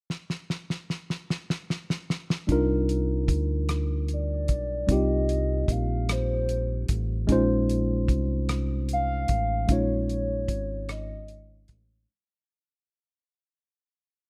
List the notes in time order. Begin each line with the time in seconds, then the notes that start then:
0.10 snare
0.30 snare
0.50 snare
0.70 snare
0.90 snare
1.10 snare
1.30 snare
1.50 snare
1.70 snare
1.90 snare
2.10 snare
2.30 snare
2.47 C2 G3 D4 D#4 F4, kick, closed hi-hat
2.52 A#4
2.89 closed hi-hat
3.28 D2, kick, closed hi-hat
3.69 cross-stick, closed hi-hat
4.08 closed hi-hat
4.13 D5
4.48 B1, kick, closed hi-hat
4.87 C2 G3 C4 D#4 F4, kick, closed hi-hat
4.92 G4 D#5
5.29 closed hi-hat
5.68 A#1 F5, kick, closed hi-hat
6.09 C5, cross-stick, closed hi-hat
6.49 closed hi-hat
6.89 A1, kick, closed hi-hat
7.27 A#1 G#3 C#4 D#4 F4, kick, closed hi-hat
7.32 C5
7.69 closed hi-hat
8.08 C2, kick, closed hi-hat
8.49 cross-stick, closed hi-hat
8.89 closed hi-hat
8.93 F5
9.28 A1, kick, closed hi-hat
9.67 A#1 G#3 C#4 D#4 F4, kick, closed hi-hat
9.72 C#5
10.09 closed hi-hat
10.48 G#1, kick, closed hi-hat
10.89 D#5, cross-stick, closed hi-hat
11.28 closed hi-hat
11.68 A1, kick, closed hi-hat